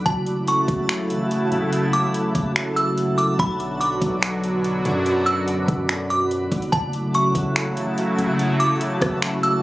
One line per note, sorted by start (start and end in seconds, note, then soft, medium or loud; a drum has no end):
0.00 3.35 F#3 medium
0.00 3.35 F#4 medium
0.00 6.69 F#4 medium
0.06 0.66 F#1 loud
0.06 3.36 C#3 medium
0.06 3.36 A3 medium
0.06 3.36 E4 medium
0.06 3.36 E5 medium
0.06 0.45 A5 loud
0.06 3.36 A5 medium
0.06 kick loud
0.06 closed hi-hat medium
0.26 closed hi-hat medium
0.48 1.69 C#6 medium
0.48 closed hi-hat medium
0.68 1.12 F#1 loud
0.68 kick medium
0.68 closed hi-hat medium
0.89 finger snap loud
0.89 closed hi-hat medium
1.10 1.20 A1 loud
1.10 closed hi-hat medium
1.31 closed hi-hat medium
1.52 2.02 F#1 loud
1.52 closed hi-hat medium
1.73 closed hi-hat medium
1.93 2.13 D6 medium
1.93 closed hi-hat medium
2.14 closed hi-hat medium
2.35 3.35 F#1 loud
2.35 kick medium
2.35 closed hi-hat medium
2.56 finger snap loud
2.56 closed hi-hat medium
2.76 3.16 E6 medium
2.76 closed hi-hat medium
2.98 closed hi-hat medium
3.18 3.38 D6 medium
3.18 closed hi-hat medium
3.39 3.99 B1 loud
3.39 6.69 B2 medium
3.39 6.69 D3 medium
3.39 6.69 F#3 medium
3.39 6.69 D4 medium
3.39 6.69 F#4 medium
3.39 6.69 D5 medium
3.39 6.69 B5 medium
3.39 3.79 B5 loud
3.39 kick loud
3.39 closed hi-hat medium
3.60 closed hi-hat medium
3.81 5.02 D6 medium
3.81 closed hi-hat medium
4.02 4.82 B1 loud
4.02 kick medium
4.02 closed hi-hat medium
4.23 finger snap loud
4.23 closed hi-hat medium
4.44 closed hi-hat medium
4.64 closed hi-hat medium
4.85 5.65 F#2 loud
4.85 closed hi-hat medium
5.06 closed hi-hat medium
5.26 5.46 E6 medium
5.26 closed hi-hat medium
5.48 closed hi-hat medium
5.68 6.48 F#2 loud
5.68 kick medium
5.68 closed hi-hat medium
5.89 finger snap loud
5.89 closed hi-hat medium
6.10 6.30 D6 medium
6.10 closed hi-hat medium
6.31 closed hi-hat medium
6.52 6.72 B1 loud
6.52 kick medium
6.52 closed hi-hat medium
6.62 closed hi-hat soft
6.72 7.33 F#1 loud
6.72 9.62 C#3 medium
6.72 9.62 F#3 medium
6.72 9.62 A3 medium
6.72 9.62 E4 medium
6.72 9.62 F#4 loud
6.72 9.62 F#4 medium
6.72 9.62 E5 medium
6.72 7.12 A5 loud
6.72 9.62 A5 medium
6.72 kick loud
6.72 closed hi-hat medium
6.93 closed hi-hat medium
7.14 8.35 C#6 medium
7.14 closed hi-hat medium
7.35 7.78 F#1 loud
7.35 kick medium
7.35 closed hi-hat medium
7.56 finger snap loud
7.56 closed hi-hat medium
7.77 7.87 A1 loud
7.77 closed hi-hat medium
7.98 closed hi-hat medium
8.18 8.68 F#1 loud
8.18 closed hi-hat medium
8.39 closed hi-hat medium
8.60 8.80 D6 medium
8.60 closed hi-hat medium
8.81 closed hi-hat medium
9.02 9.62 F#1 loud
9.02 kick medium
9.02 cross-stick loud
9.02 closed hi-hat medium
9.22 finger snap loud
9.22 closed hi-hat medium
9.43 9.62 E6 medium
9.43 closed hi-hat medium